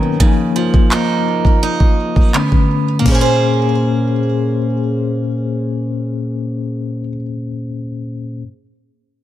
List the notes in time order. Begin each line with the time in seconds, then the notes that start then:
Already playing: B2 D#3 A#3 C#4 A#4
0.20 C#3 F3 A#3 D#4, kick
0.56 F3
0.74 kick
0.92 F3 A#3 D#4, clap
1.45 kick
1.63 D#4
1.80 kick
2.16 kick
2.34 D3 A3 B3 C#4, clap
2.52 kick
2.99 A#2 A#3
3.04 A#3 C#4, kick, crash
3.09 G#4 C5
3.15 G#4
3.21 C5